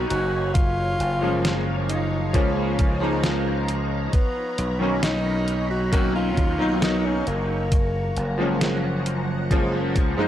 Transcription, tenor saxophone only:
0.09 0.52 F#4 loud
0.54 1.58 F4 loud
1.89 2.36 D#4 medium
2.34 3.69 C#4 medium
4.13 4.77 B3 loud
4.81 5.02 C#4 medium
5.03 5.66 D#4 loud
5.71 5.91 F#4 loud
5.93 6.14 F#4 loud
6.15 6.78 F4 loud
6.83 7.07 D#4 loud
7.05 7.29 C#4 medium
7.27 9.06 A#3 loud

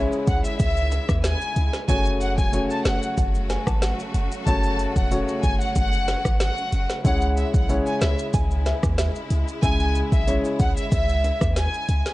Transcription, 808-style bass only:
0.27 0.41 C#2 medium
0.60 0.99 C#2 loud
1.09 1.35 D#2 medium
1.56 1.70 C#2 medium
1.89 2.39 F#1 loud
2.38 2.64 E1 medium
2.85 2.99 F#1 medium
3.18 3.57 F#1 loud
3.67 3.93 G#1 medium
4.14 4.28 F#1 medium
4.47 4.86 F#1 loud
4.96 5.22 E1 medium
5.44 5.57 F#1 loud
5.76 6.15 F#1 loud
6.25 6.51 G#1 loud
6.73 6.86 F#1 medium
7.05 7.44 C#2 loud
7.54 7.80 B1 medium
8.02 8.15 C#2 medium
8.34 8.73 C#2 loud
8.83 9.09 D#2 medium
9.31 9.44 C#2 loud
9.63 10.02 C#2 loud
10.12 10.38 B1 medium
10.60 10.73 C#2 medium
10.92 11.31 C#2 loud
11.41 11.67 D#2 medium
11.89 12.02 C#2 medium

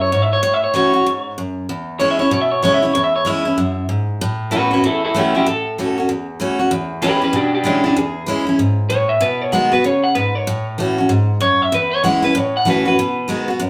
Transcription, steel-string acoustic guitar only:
0.00 0.10 F#2 medium
0.12 0.42 G#2 medium
0.43 1.03 A2 medium
0.74 0.93 E3 medium
0.74 0.93 A3 medium
0.74 0.94 C#4 medium
0.74 0.92 F#4 medium
0.93 1.06 C#4 soft
0.93 1.05 F#4 medium
1.06 1.36 G#2 medium
1.38 1.68 F#2 medium
1.69 2.30 E2 medium
2.00 2.19 E3 medium
2.00 2.19 G#3 medium
2.00 2.19 C#4 medium
2.00 2.18 E4 medium
2.19 2.32 C#4 medium
2.19 2.31 E4 medium
2.31 2.92 B2 medium
2.63 2.82 E3 medium
2.63 2.82 G#3 medium
2.63 2.83 C#4 loud
2.63 2.81 E4 medium
2.83 2.95 C#4 soft
2.83 2.94 E4 medium
2.95 3.55 E2 loud
3.25 3.44 E3 medium
3.25 3.45 G#3 medium
3.25 3.45 C#4 medium
3.25 3.44 E4 loud
3.45 3.58 C#4 medium
3.45 3.57 E4 medium
3.58 3.88 F#2 medium
3.89 4.19 G#2 medium
4.21 4.81 A2 loud
4.51 4.70 E3 medium
4.51 4.71 A3 medium
4.51 4.71 C#4 medium
4.51 4.70 F#4 medium
4.71 4.84 C#4 medium
4.71 4.83 F#4 medium
4.84 5.44 E2 medium
5.14 5.33 E3 medium
5.14 5.34 A3 medium
5.14 5.34 C#4 medium
5.14 5.33 F#4 medium
5.35 5.47 C#4 soft
5.35 5.46 F#4 medium
5.46 6.07 A2 medium
5.78 5.97 E3 medium
5.78 5.97 A3 medium
5.78 5.97 C#4 medium
5.78 5.96 F#4 medium
5.98 6.10 C#4 medium
5.98 6.09 F#4 medium
6.09 6.69 E2 medium
6.40 6.58 E3 medium
6.40 6.59 A3 medium
6.40 6.59 C#4 medium
6.40 6.58 F#4 loud
6.59 6.72 C#4 medium
6.59 6.71 F#4 medium
6.71 7.32 E2 loud
7.02 7.21 E3 medium
7.02 7.21 G#3 medium
7.02 7.22 C#4 medium
7.02 7.20 E4 medium
7.22 7.34 C#4 soft
7.22 7.33 E4 medium
7.33 7.94 B2 medium
7.64 7.83 E3 medium
7.64 7.84 G#3 medium
7.64 7.84 C#4 medium
7.64 7.83 E4 medium
7.84 7.97 C#4 medium
7.84 7.96 E4 medium
7.97 8.57 E2 loud
8.26 8.46 E3 medium
8.26 8.47 G#3 medium
8.26 8.47 C#4 medium
8.26 8.45 E4 medium
8.47 8.60 C#4 medium
8.47 8.59 E4 medium
8.59 8.89 G#2 medium
8.90 9.20 A2 medium
9.21 9.82 B2 loud
9.52 9.71 D#3 medium
9.52 9.72 G#3 medium
9.52 9.72 B3 medium
9.52 9.70 F#4 loud
9.72 9.85 B3 medium
9.72 9.84 F#4 medium
9.84 10.15 C#3 medium
10.15 10.46 G#2 medium
10.47 11.08 A2 loud
10.78 10.97 E3 medium
10.78 10.97 A3 medium
10.78 10.98 C#4 medium
10.78 10.97 F#4 medium
10.98 11.11 C#4 medium
10.98 11.10 F#4 medium
11.09 11.40 G#2 medium
11.40 11.71 F#2 medium
11.72 12.33 E2 loud
12.04 12.23 E3 medium
12.04 12.23 G#3 medium
12.04 12.23 C#4 medium
12.04 12.21 E4 loud
12.22 12.36 C#4 medium
12.22 12.35 E4 medium
12.35 12.96 A2 loud
12.65 12.85 E3 medium
12.65 12.85 A3 medium
12.65 12.85 C#4 medium
12.65 12.84 F#4 loud
12.85 12.99 C#4 medium
12.85 12.97 F#4 medium
12.99 13.59 B2 loud
13.28 13.47 D#3 medium
13.28 13.48 G#3 medium
13.28 13.48 B3 medium
13.28 13.47 F#4 medium
13.48 13.61 B3 medium
13.48 13.60 F#4 medium
13.60 13.70 F#2 medium

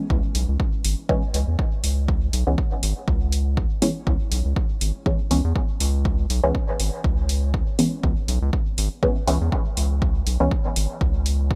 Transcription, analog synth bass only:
0.10 0.21 C#2 loud
0.35 0.46 B1 loud
0.49 0.57 C#2 loud
0.85 0.95 G#1 loud
1.34 1.45 C#2 medium
1.48 1.57 E2 loud
1.84 2.30 C#2 medium
2.33 2.44 B1 loud
2.47 2.56 C#2 loud
2.83 2.94 G#1 loud
3.08 3.66 C#2 medium
4.07 4.18 C#2 loud
4.32 4.42 B1 loud
4.45 4.54 C#2 loud
4.81 4.92 G#1 loud
5.31 5.42 C#2 loud
5.44 5.53 E2 medium
5.80 6.26 C#2 medium
6.30 6.41 B1 medium
6.44 6.52 C#2 loud
6.80 6.90 G#1 loud
7.04 7.62 C#2 medium
8.04 8.14 C#2 loud
8.28 8.39 B1 loud
8.42 8.51 C#2 loud
8.78 8.89 G#1 loud
9.28 9.38 C#2 loud
9.41 9.50 E2 loud
9.77 10.23 C#2 medium
10.27 10.37 B1 loud
10.40 10.49 C#2 loud
10.76 10.87 G#1 loud
11.01 11.55 C#2 medium

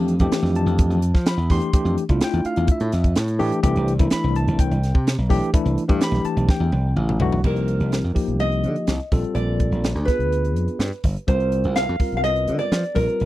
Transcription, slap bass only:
0.00 0.16 F2 medium
0.20 0.30 F2 medium
0.31 muted slap bass stroke soft
0.43 0.64 F2 medium
0.66 0.88 F2 medium
0.90 1.11 F2 medium
1.14 1.35 F3 medium
1.37 1.59 E2 medium
1.73 muted slap bass stroke soft
1.85 1.96 F2 medium
2.09 2.20 C2 medium
2.33 2.44 E2 medium
2.45 muted slap bass stroke soft
2.57 2.67 E2 medium
2.81 2.91 A2 medium
2.93 3.14 F2 loud
3.17 3.38 A2 loud
3.40 3.51 A2 medium
3.63 3.74 C2 loud
3.76 3.97 C2 medium
4.00 4.10 C2 medium
4.12 muted slap bass stroke soft
4.24 4.45 C2 medium
4.48 4.68 C2 medium
4.71 4.92 C2 loud
4.94 5.15 C3 medium
5.18 5.39 B1 medium
5.54 muted slap bass stroke soft
5.65 5.76 C2 medium
5.89 6.00 G2 medium
6.12 6.23 B1 medium
6.37 6.47 B1 medium
6.60 6.71 E2 medium
6.72 6.94 C2 loud
6.96 7.18 A1 medium
7.19 7.41 B1 medium
7.44 7.76 C2 medium
7.80 8.01 C2 medium
8.04 8.15 F2 medium
8.28 8.65 C2 medium
8.64 8.75 D3 medium
8.88 8.99 C2 medium
9.12 9.23 A#1 medium
9.35 9.67 A#1 medium
9.71 9.93 A#1 medium
9.95 10.06 D2 medium
10.19 10.56 D2 medium
10.56 10.67 F2 medium
10.79 10.90 G2 medium
11.04 11.15 G1 medium
11.28 11.60 C2 medium
11.64 11.86 C2 medium
11.89 11.99 F2 medium
12.12 12.49 C2 medium
12.48 12.59 D3 medium
12.72 12.83 F3 medium
12.96 13.07 A#1 medium
13.21 13.25 A#1 medium

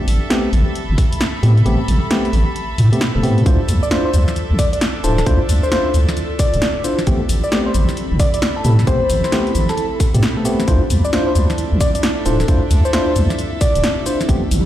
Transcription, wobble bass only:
0.08 0.19 A1 medium
0.53 0.64 A1 medium
0.89 0.96 G1 loud
1.43 1.62 A2 medium
1.66 1.77 A1 medium
1.88 1.99 A1 medium
2.33 2.44 A1 medium
2.78 2.90 A2 loud
3.15 3.22 E1 medium
3.23 3.42 A2 medium
3.46 3.57 D2 medium
3.68 3.80 D2 medium
4.14 4.25 D2 medium
4.51 4.57 C2 loud
5.04 5.23 D1 medium
5.27 5.38 D2 loud
5.49 5.60 D2 medium
5.94 6.05 D2 loud
6.54 6.60 D1 medium
7.07 7.18 A1 medium
7.30 7.41 A1 medium
7.75 7.86 A1 medium
8.11 8.18 G1 medium
8.65 8.84 A2 medium
8.87 8.99 A1 loud
9.10 9.21 A1 medium
9.55 9.66 A1 medium
10.14 10.21 A2 loud
10.68 10.79 D2 loud
10.90 11.01 D2 loud
11.35 11.47 D2 medium
11.72 11.79 C2 loud
12.26 12.45 D1 medium
12.48 12.60 D2 medium
12.71 12.82 D2 loud
13.16 13.27 D2 medium
13.75 13.82 D1 loud
14.29 14.40 A1 loud
14.51 14.63 A1 loud

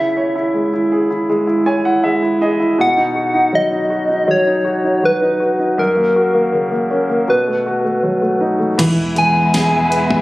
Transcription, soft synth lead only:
0.00 0.51 E5 medium
2.81 3.57 F#5 medium
3.55 4.32 D#5 medium
4.31 5.07 C#5 medium
5.05 5.81 B4 medium
5.79 7.31 A#4 medium
7.30 8.42 B4 medium
9.18 10.22 G#5 loud

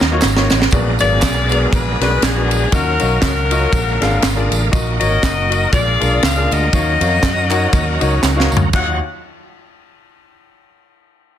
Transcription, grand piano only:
0.11 0.26 A#3 medium
0.11 0.26 D#4 medium
0.11 0.26 F4 medium
0.11 0.26 F#4 medium
0.11 0.26 C#5 loud
0.36 0.60 A#3 medium
0.36 0.60 D#4 medium
0.36 0.60 F4 medium
0.36 0.60 F#4 medium
0.36 0.60 C#5 loud
0.72 1.47 A#2 medium
0.72 0.89 B3 medium
0.72 0.89 F#4 medium
0.72 0.90 G#4 medium
0.72 0.90 A#4 medium
0.72 0.90 D5 medium
1.01 1.29 F#3 medium
1.01 1.29 B3 medium
1.01 1.29 G#4 medium
1.01 1.29 A#4 medium
1.01 1.29 F5 medium
1.51 1.79 F#3 medium
1.51 1.79 B3 medium
1.51 1.79 G#4 medium
1.51 1.79 A#4 medium
1.51 1.80 D5 medium
2.01 2.21 B3 medium
2.01 2.21 F#4 medium
2.01 2.21 G#4 medium
2.01 2.21 A#4 medium
2.01 2.21 D5 medium
2.36 2.60 B3 medium
2.36 2.60 F#4 medium
2.36 2.60 G#4 medium
2.36 2.60 A#4 medium
2.36 2.60 D5 medium
2.71 3.46 D#3 medium
2.71 2.89 C#4 medium
2.71 2.89 F4 medium
2.71 2.89 F#4 medium
2.71 2.90 A#4 medium
2.71 2.90 D#5 medium
3.00 3.28 C#4 medium
3.00 3.29 F#4 medium
3.00 3.29 A#4 medium
3.00 3.29 D#5 medium
3.00 3.29 F5 medium
3.51 3.73 C#4 medium
3.51 3.73 F4 medium
3.51 3.73 F#4 medium
3.51 3.73 A#4 medium
3.51 3.73 D#5 medium
3.74 4.47 A#2 medium
4.01 4.21 D4 medium
4.01 4.21 F4 medium
4.01 4.21 G#4 medium
4.01 4.21 A#4 medium
4.01 4.22 F5 loud
4.36 4.60 D4 medium
4.36 4.60 F4 medium
4.36 4.60 G#4 medium
4.36 4.60 A#4 medium
4.36 4.61 D5 medium
4.71 5.46 A#2 medium
4.71 4.89 F#4 medium
4.71 4.90 A#4 medium
4.71 4.90 D#5 loud
5.00 5.29 F#4 medium
5.00 5.29 A#4 medium
5.00 5.29 C#5 medium
5.50 5.72 F#4 medium
5.50 5.72 A#4 medium
5.50 5.73 D#5 medium
5.73 6.47 A#2 medium
6.00 6.21 D4 medium
6.00 6.21 F4 medium
6.00 6.21 G#4 medium
6.00 6.21 A#4 medium
6.00 6.21 F5 medium
6.36 6.60 D4 medium
6.36 6.60 F4 medium
6.36 6.60 G#4 medium
6.36 6.61 A#4 medium
6.36 6.60 D5 medium
6.72 7.47 D#3 medium
6.72 6.90 D#4 medium
6.72 6.90 F#4 medium
6.72 6.90 A#4 medium
6.72 6.90 C#5 medium
6.72 6.91 F5 medium
7.00 7.29 D#4 medium
7.00 7.29 F#4 medium
7.00 7.29 A#4 medium
7.00 7.29 C#5 medium
7.00 7.30 F5 medium
7.50 7.79 D#4 medium
7.50 7.80 F#4 medium
7.50 7.79 A#4 medium
7.50 7.80 C#5 medium
7.50 7.80 F#5 loud
8.00 8.21 D#4 medium
8.00 8.21 F#4 medium
8.00 8.21 A#4 medium
8.00 8.22 C#5 medium
8.00 8.22 D#5 medium
8.36 8.60 D#4 medium
8.36 8.60 F#4 medium
8.36 8.60 A#4 medium
8.36 8.61 C#5 medium
8.36 8.61 F5 medium
8.74 9.00 D#2 medium
8.74 9.00 D#4 medium
8.74 9.00 F#4 medium
8.74 9.00 C#5 medium
8.74 9.00 F5 medium

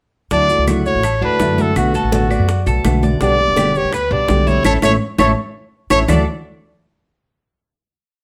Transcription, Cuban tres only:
0.31 0.66 D4 medium
0.68 1.03 F#4 medium
1.04 1.21 A4 medium
1.22 1.57 D4 medium
1.58 1.93 F#4 medium
1.95 2.30 A4 medium
2.30 2.65 D5 medium
2.67 3.02 A4 medium
3.03 3.20 D5 medium
3.21 3.56 D4 medium
3.57 3.92 G4 medium
3.94 4.11 B4 medium
4.11 4.46 D4 medium
4.47 4.64 E4 medium
4.65 4.77 E4 medium
4.65 4.77 A4 medium
4.65 4.77 C#5 medium
4.82 4.94 E4 medium
4.82 4.94 A4 medium
4.82 4.94 C#5 loud
5.19 5.31 E4 medium
5.19 5.31 A4 medium
5.19 5.31 C#5 medium
5.91 6.02 E4 medium
5.91 6.02 A4 medium
5.91 6.02 C#5 loud
6.08 6.25 D4 medium
6.08 6.26 A4 medium
6.08 6.26 D5 medium

